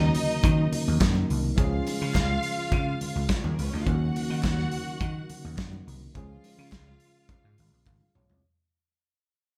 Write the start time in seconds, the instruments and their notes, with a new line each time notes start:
Already playing: tonewheel organ C#3 F#3 A#3 D#4, tine electric piano D#3 A#3 C#4 F#4, string section D#4 D#5
0.15 open hi-hat, low conga
0.43 slap bass D#3, kick, closed hi-hat, muted conga
0.72 open hi-hat, muted conga, low conga
0.88 slap bass D#2
1.01 slap bass F#2, kick, snare, clap, closed hi-hat, high conga
1.15 high conga
1.30 slap bass C2, open hi-hat
1.56 slap bass C#2, tonewheel organ C#3 F3 G#3 F4, tine electric piano F3 G#3 C#4 G#4, string section F4 F5, kick, closed hi-hat, muted conga
1.87 open hi-hat, muted conga
2.01 slap bass C#3
2.14 slap bass C#2, kick, snare, clap, closed hi-hat, high conga
2.43 open hi-hat
2.72 slap bass C#3, kick, closed hi-hat, muted conga
3.01 open hi-hat, muted conga, low conga
3.15 slap bass C#2
3.29 kick, snare, clap, closed hi-hat, high conga
3.37 string section F#3 F#4
3.44 slap bass D#2, string section G#3 G#4, high conga
3.51 string section A#3 A#4
3.58 slap bass C#2, string section B3 B4, open hi-hat
3.66 string section C#4 C#5
3.73 slap bass D2, string section D#4 D#5
3.80 string section F4 F5
3.85 slap bass D#2, tonewheel organ C#3 F#3 A#3 D#4, tine electric piano D#3 A#3 C#4 F4, string section F#4 F#5, kick, closed hi-hat, muted conga
3.95 tine electric piano F#4
4.16 open hi-hat, muted conga
4.30 slap bass D#3
4.43 slap bass D#2, kick, snare, clap, closed hi-hat, high conga
4.58 snare
4.71 open hi-hat, low conga
5.01 slap bass D#3, kick, closed hi-hat, muted conga
5.29 open hi-hat, muted conga, low conga
5.45 slap bass D#2
5.58 slap bass F#2, kick, snare, clap, closed hi-hat, high conga
5.73 high conga
5.87 slap bass C2, open hi-hat
6.14 slap bass C#2, tine electric piano F3 G#3 C#4 G#4, tonewheel organ F3 G#3 F4, string section F4 F5, kick, closed hi-hat, muted conga
6.44 open hi-hat, muted conga
6.58 slap bass C#3
6.72 slap bass C#2, kick, snare, clap, closed hi-hat, high conga
7.00 open hi-hat
7.29 kick, closed hi-hat, muted conga
7.44 slap bass G#2
7.58 slap bass G#1, open hi-hat, low conga
7.73 slap bass A#1
7.87 slap bass G#1, tine electric piano F5, kick, clap, high tom, high conga
8.01 high conga
8.15 slap bass B1, tine electric piano C#5, mid tom
8.30 slap bass C2, floor tom